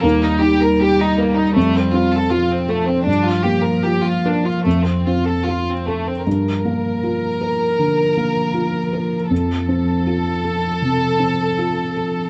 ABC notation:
X:1
M:4/4
L:1/16
Q:1/4=79
K:Gm
V:1 name="Felt piano"
E,,2 E2 G2 B2 F,,2 C2 F2 A2 | G,,2 B,2 F2 B2 F,,2 C2 F2 A2 | G,,2 B,2 F2 B2 D,2 B,2 F2 B2 | F,,2 C2 F2 A2 C,2 C2 F2 A2 |]
V:2 name="Violin section"
B, E G B G E B, E A, C F A F C A, C | D F G B G F D F A, C F A F C A, C | B16 | A16 |]
V:3 name="Cello" clef=bass
G,12 F,4- | F,12- F,3 z | F,16- | F,16 |]